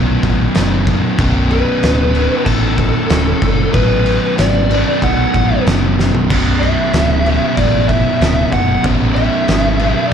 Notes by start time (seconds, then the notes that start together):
Already playing: B1 F#2 B2
0.23 A1, kick, crash
0.55 F#1, snare, crash
0.87 kick, crash
1.17 B0 B1 F#2 B2, kick, crash
1.51 B4, crash
1.83 D1, snare, crash
2.14 B1 F#2 B2, crash
2.44 A1 A4, kick, crash
2.78 kick, crash
3.09 D1, snare, crash
3.42 F#1, kick, crash
3.73 A1 B1 F#2 B2 B4, kick, crash
4.06 crash
4.37 G#1 D5, snare, crash
4.69 B1 F#2 B2, crash
5.02 B1 F#5, kick, crash
5.34 A1, kick, crash
5.67 F#1, snare, crash
5.99 snare
6.15 floor tom
6.29 B0 B1 F#2 B2, kick, crash
6.60 E5, crash
6.93 D1, snare, crash
7.24 B1 F#2 B2, crash
7.57 A1 D5, kick, crash
7.88 E5, kick, crash
8.21 D1, snare, crash
8.52 F#1 F#5, kick, crash
8.83 A1 B1 F#2 B2, kick, crash
9.14 E5, crash
9.48 G#1, snare, crash
9.79 F#2 B2, crash
9.84 B1
10.08 D5